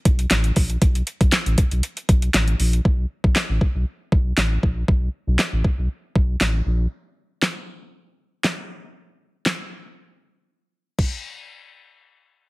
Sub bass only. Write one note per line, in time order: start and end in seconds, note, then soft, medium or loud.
0.05 0.26 B1 medium
0.31 0.51 A1 loud
0.57 0.77 A#1 medium
0.82 1.02 B1 loud
1.21 1.30 B1 loud
1.46 1.56 A1 loud
1.72 1.81 B1 medium
2.09 2.29 B1 medium
2.34 2.55 A1 medium
2.60 2.80 A#1 loud
2.85 3.05 B1 loud
3.24 3.34 B1 loud
3.49 3.59 A1 medium
3.75 3.84 B1 medium
4.12 4.33 B1 medium
4.37 4.58 A1 loud
4.63 4.83 A#1 loud
4.88 5.09 B1 loud
5.27 5.37 B1 medium
5.53 5.62 A1 medium
5.78 5.88 B1 medium
6.16 6.36 B1 medium
6.41 6.61 A1 loud
6.66 6.87 A#1 loud